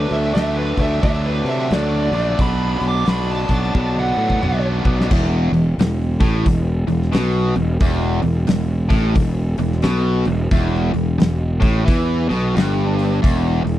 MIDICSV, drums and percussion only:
0, 0, Header, 1, 2, 480
1, 0, Start_track
1, 0, Key_signature, 1, "minor"
1, 0, Tempo, 677201
1, 1696, Time_signature, 4, 2, 24, 8
1, 9772, End_track
2, 0, Start_track
2, 0, Title_t, "Drums"
2, 71, Note_on_c, 9, 46, 40
2, 142, Note_off_c, 9, 46, 0
2, 247, Note_on_c, 9, 46, 61
2, 259, Note_on_c, 9, 38, 97
2, 318, Note_off_c, 9, 46, 0
2, 330, Note_off_c, 9, 38, 0
2, 548, Note_on_c, 9, 36, 68
2, 549, Note_on_c, 9, 46, 44
2, 619, Note_off_c, 9, 36, 0
2, 620, Note_off_c, 9, 46, 0
2, 731, Note_on_c, 9, 36, 107
2, 734, Note_on_c, 9, 46, 62
2, 802, Note_off_c, 9, 36, 0
2, 804, Note_off_c, 9, 46, 0
2, 1034, Note_on_c, 9, 46, 48
2, 1105, Note_off_c, 9, 46, 0
2, 1210, Note_on_c, 9, 46, 61
2, 1223, Note_on_c, 9, 38, 105
2, 1281, Note_off_c, 9, 46, 0
2, 1293, Note_off_c, 9, 38, 0
2, 1510, Note_on_c, 9, 46, 49
2, 1581, Note_off_c, 9, 46, 0
2, 1692, Note_on_c, 9, 46, 64
2, 1693, Note_on_c, 9, 36, 97
2, 1763, Note_off_c, 9, 46, 0
2, 1764, Note_off_c, 9, 36, 0
2, 1988, Note_on_c, 9, 46, 44
2, 2059, Note_off_c, 9, 46, 0
2, 2168, Note_on_c, 9, 46, 69
2, 2180, Note_on_c, 9, 38, 100
2, 2239, Note_off_c, 9, 46, 0
2, 2251, Note_off_c, 9, 38, 0
2, 2470, Note_on_c, 9, 46, 47
2, 2474, Note_on_c, 9, 36, 69
2, 2541, Note_off_c, 9, 46, 0
2, 2545, Note_off_c, 9, 36, 0
2, 2579, Note_on_c, 9, 38, 27
2, 2650, Note_off_c, 9, 38, 0
2, 2657, Note_on_c, 9, 36, 112
2, 2728, Note_off_c, 9, 36, 0
2, 2808, Note_on_c, 9, 48, 43
2, 2879, Note_off_c, 9, 48, 0
2, 3047, Note_on_c, 9, 36, 58
2, 3118, Note_off_c, 9, 36, 0
2, 3140, Note_on_c, 9, 45, 73
2, 3210, Note_off_c, 9, 45, 0
2, 3439, Note_on_c, 9, 36, 88
2, 3510, Note_off_c, 9, 36, 0
2, 3549, Note_on_c, 9, 38, 76
2, 3619, Note_off_c, 9, 38, 0
2, 3621, Note_on_c, 9, 49, 100
2, 3622, Note_on_c, 9, 36, 107
2, 3692, Note_off_c, 9, 49, 0
2, 3693, Note_off_c, 9, 36, 0
2, 3924, Note_on_c, 9, 46, 49
2, 3995, Note_off_c, 9, 46, 0
2, 4104, Note_on_c, 9, 46, 69
2, 4116, Note_on_c, 9, 38, 111
2, 4175, Note_off_c, 9, 46, 0
2, 4187, Note_off_c, 9, 38, 0
2, 4399, Note_on_c, 9, 36, 106
2, 4401, Note_on_c, 9, 46, 48
2, 4469, Note_off_c, 9, 36, 0
2, 4472, Note_off_c, 9, 46, 0
2, 4579, Note_on_c, 9, 36, 97
2, 4580, Note_on_c, 9, 46, 77
2, 4650, Note_off_c, 9, 36, 0
2, 4651, Note_off_c, 9, 46, 0
2, 4877, Note_on_c, 9, 46, 54
2, 4948, Note_off_c, 9, 46, 0
2, 4979, Note_on_c, 9, 38, 32
2, 5050, Note_off_c, 9, 38, 0
2, 5054, Note_on_c, 9, 46, 69
2, 5066, Note_on_c, 9, 38, 106
2, 5125, Note_off_c, 9, 46, 0
2, 5137, Note_off_c, 9, 38, 0
2, 5356, Note_on_c, 9, 46, 55
2, 5427, Note_off_c, 9, 46, 0
2, 5530, Note_on_c, 9, 46, 80
2, 5534, Note_on_c, 9, 36, 102
2, 5601, Note_off_c, 9, 46, 0
2, 5605, Note_off_c, 9, 36, 0
2, 5828, Note_on_c, 9, 46, 57
2, 5899, Note_off_c, 9, 46, 0
2, 6005, Note_on_c, 9, 46, 87
2, 6017, Note_on_c, 9, 38, 102
2, 6076, Note_off_c, 9, 46, 0
2, 6088, Note_off_c, 9, 38, 0
2, 6310, Note_on_c, 9, 36, 94
2, 6311, Note_on_c, 9, 46, 56
2, 6381, Note_off_c, 9, 36, 0
2, 6382, Note_off_c, 9, 46, 0
2, 6487, Note_on_c, 9, 46, 83
2, 6490, Note_on_c, 9, 36, 94
2, 6558, Note_off_c, 9, 46, 0
2, 6561, Note_off_c, 9, 36, 0
2, 6788, Note_on_c, 9, 46, 60
2, 6859, Note_off_c, 9, 46, 0
2, 6891, Note_on_c, 9, 38, 29
2, 6962, Note_off_c, 9, 38, 0
2, 6962, Note_on_c, 9, 46, 73
2, 6974, Note_on_c, 9, 38, 99
2, 7032, Note_off_c, 9, 46, 0
2, 7044, Note_off_c, 9, 38, 0
2, 7266, Note_on_c, 9, 46, 59
2, 7337, Note_off_c, 9, 46, 0
2, 7450, Note_on_c, 9, 46, 73
2, 7452, Note_on_c, 9, 36, 102
2, 7520, Note_off_c, 9, 46, 0
2, 7523, Note_off_c, 9, 36, 0
2, 7619, Note_on_c, 9, 38, 28
2, 7689, Note_off_c, 9, 38, 0
2, 7753, Note_on_c, 9, 46, 49
2, 7824, Note_off_c, 9, 46, 0
2, 7938, Note_on_c, 9, 46, 72
2, 7950, Note_on_c, 9, 38, 114
2, 8009, Note_off_c, 9, 46, 0
2, 8021, Note_off_c, 9, 38, 0
2, 8236, Note_on_c, 9, 36, 102
2, 8239, Note_on_c, 9, 46, 56
2, 8307, Note_off_c, 9, 36, 0
2, 8310, Note_off_c, 9, 46, 0
2, 8420, Note_on_c, 9, 36, 104
2, 8425, Note_on_c, 9, 46, 76
2, 8491, Note_off_c, 9, 36, 0
2, 8496, Note_off_c, 9, 46, 0
2, 8724, Note_on_c, 9, 46, 55
2, 8795, Note_off_c, 9, 46, 0
2, 8906, Note_on_c, 9, 46, 78
2, 8918, Note_on_c, 9, 38, 99
2, 8977, Note_off_c, 9, 46, 0
2, 8989, Note_off_c, 9, 38, 0
2, 9206, Note_on_c, 9, 46, 54
2, 9277, Note_off_c, 9, 46, 0
2, 9383, Note_on_c, 9, 36, 99
2, 9388, Note_on_c, 9, 46, 81
2, 9454, Note_off_c, 9, 36, 0
2, 9458, Note_off_c, 9, 46, 0
2, 9688, Note_on_c, 9, 46, 52
2, 9759, Note_off_c, 9, 46, 0
2, 9772, End_track
0, 0, End_of_file